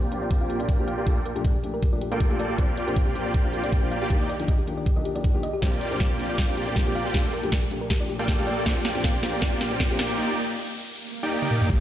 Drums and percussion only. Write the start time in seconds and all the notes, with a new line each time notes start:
0.12 closed hi-hat
0.31 kick, closed hi-hat
0.50 closed hi-hat
0.60 closed hi-hat
0.69 kick, closed hi-hat
0.88 closed hi-hat
1.07 kick, closed hi-hat
1.26 closed hi-hat
1.36 closed hi-hat
1.45 kick, closed hi-hat
1.64 closed hi-hat
1.82 kick, closed hi-hat
2.01 closed hi-hat
2.12 closed hi-hat
2.20 kick, closed hi-hat
2.39 closed hi-hat
2.58 kick, closed hi-hat
2.77 closed hi-hat
2.88 closed hi-hat
2.96 kick, closed hi-hat
3.15 closed hi-hat
3.34 kick, closed hi-hat
3.53 closed hi-hat
3.64 closed hi-hat
3.72 kick, closed hi-hat
3.91 closed hi-hat
4.10 kick, closed hi-hat
4.29 closed hi-hat
4.40 closed hi-hat
4.48 kick, closed hi-hat
4.67 closed hi-hat
4.86 kick, closed hi-hat
5.05 closed hi-hat
5.16 closed hi-hat
5.24 kick, closed hi-hat
5.43 closed hi-hat
5.62 kick, snare, closed hi-hat
5.81 closed hi-hat
5.91 closed hi-hat
6.00 kick, snare, closed hi-hat
6.19 closed hi-hat
6.38 kick, snare, closed hi-hat
6.57 closed hi-hat
6.67 closed hi-hat
6.76 kick, snare, closed hi-hat
6.95 closed hi-hat
7.14 kick, snare, closed hi-hat
7.33 closed hi-hat
7.43 closed hi-hat
7.52 kick, snare, closed hi-hat
7.71 closed hi-hat
7.90 kick, snare, closed hi-hat
8.09 closed hi-hat
8.19 closed hi-hat
8.28 kick, snare, closed hi-hat
8.47 closed hi-hat
8.66 kick, snare, closed hi-hat
8.85 snare, closed hi-hat
8.95 closed hi-hat
9.04 kick, snare, closed hi-hat
9.23 snare, closed hi-hat
9.42 kick, snare, closed hi-hat
9.61 snare, closed hi-hat
9.71 closed hi-hat
9.80 kick, snare, closed hi-hat
9.99 snare, closed hi-hat
11.42 high tom
11.51 mid tom
11.61 mid tom
11.70 kick, closed hi-hat, crash